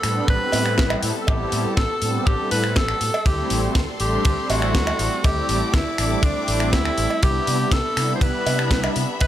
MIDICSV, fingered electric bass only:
0, 0, Header, 1, 3, 480
1, 0, Start_track
1, 0, Tempo, 495868
1, 1235, Time_signature, 4, 2, 24, 8
1, 8975, End_track
2, 0, Start_track
2, 0, Title_t, "Fingered electric bass"
2, 0, Program_c, 0, 33
2, 36, Note_on_c, 0, 45, 87
2, 188, Note_off_c, 0, 45, 0
2, 272, Note_on_c, 0, 33, 101
2, 350, Note_off_c, 0, 33, 0
2, 514, Note_on_c, 0, 45, 88
2, 766, Note_on_c, 0, 33, 88
2, 781, Note_off_c, 0, 45, 0
2, 913, Note_off_c, 0, 33, 0
2, 996, Note_on_c, 0, 45, 92
2, 1072, Note_off_c, 0, 45, 0
2, 1239, Note_on_c, 0, 33, 102
2, 1390, Note_off_c, 0, 33, 0
2, 1475, Note_on_c, 0, 45, 105
2, 1591, Note_off_c, 0, 45, 0
2, 1716, Note_on_c, 0, 33, 82
2, 1792, Note_off_c, 0, 33, 0
2, 1956, Note_on_c, 0, 45, 90
2, 2108, Note_off_c, 0, 45, 0
2, 2196, Note_on_c, 0, 33, 98
2, 2272, Note_off_c, 0, 33, 0
2, 2438, Note_on_c, 0, 45, 83
2, 2676, Note_on_c, 0, 33, 82
2, 2690, Note_off_c, 0, 45, 0
2, 2828, Note_off_c, 0, 33, 0
2, 2915, Note_on_c, 0, 45, 88
2, 2991, Note_off_c, 0, 45, 0
2, 3153, Note_on_c, 0, 38, 97
2, 3307, Note_off_c, 0, 38, 0
2, 3396, Note_on_c, 0, 33, 105
2, 3548, Note_off_c, 0, 33, 0
2, 3632, Note_on_c, 0, 38, 81
2, 3710, Note_off_c, 0, 38, 0
2, 3876, Note_on_c, 0, 33, 82
2, 4028, Note_off_c, 0, 33, 0
2, 4117, Note_on_c, 0, 38, 99
2, 4193, Note_off_c, 0, 38, 0
2, 4355, Note_on_c, 0, 33, 89
2, 4596, Note_off_c, 0, 33, 0
2, 4596, Note_on_c, 0, 38, 87
2, 4748, Note_off_c, 0, 38, 0
2, 4834, Note_on_c, 0, 33, 91
2, 4911, Note_off_c, 0, 33, 0
2, 5077, Note_on_c, 0, 38, 105
2, 5228, Note_off_c, 0, 38, 0
2, 5316, Note_on_c, 0, 33, 105
2, 5431, Note_off_c, 0, 33, 0
2, 5552, Note_on_c, 0, 38, 84
2, 5630, Note_off_c, 0, 38, 0
2, 5796, Note_on_c, 0, 33, 91
2, 5948, Note_off_c, 0, 33, 0
2, 6029, Note_on_c, 0, 38, 98
2, 6108, Note_off_c, 0, 38, 0
2, 6276, Note_on_c, 0, 33, 91
2, 6514, Note_off_c, 0, 33, 0
2, 6514, Note_on_c, 0, 38, 81
2, 6667, Note_off_c, 0, 38, 0
2, 6756, Note_on_c, 0, 33, 96
2, 6832, Note_off_c, 0, 33, 0
2, 7000, Note_on_c, 0, 36, 96
2, 7150, Note_off_c, 0, 36, 0
2, 7236, Note_on_c, 0, 48, 103
2, 7388, Note_off_c, 0, 48, 0
2, 7469, Note_on_c, 0, 36, 83
2, 7548, Note_off_c, 0, 36, 0
2, 7714, Note_on_c, 0, 48, 89
2, 7867, Note_off_c, 0, 48, 0
2, 7950, Note_on_c, 0, 36, 100
2, 8029, Note_off_c, 0, 36, 0
2, 8194, Note_on_c, 0, 48, 91
2, 8428, Note_on_c, 0, 36, 81
2, 8443, Note_off_c, 0, 48, 0
2, 8584, Note_off_c, 0, 36, 0
2, 8676, Note_on_c, 0, 48, 92
2, 8752, Note_off_c, 0, 48, 0
2, 8917, Note_on_c, 0, 36, 103
2, 8975, Note_off_c, 0, 36, 0
2, 8975, End_track
3, 0, Start_track
3, 0, Title_t, "Muted fingered electric bass strokes"
3, 1597, Note_on_c, 9, 29, 43
3, 1694, Note_off_c, 9, 29, 0
3, 5437, Note_on_c, 9, 29, 43
3, 5534, Note_off_c, 9, 29, 0
3, 8975, End_track
0, 0, End_of_file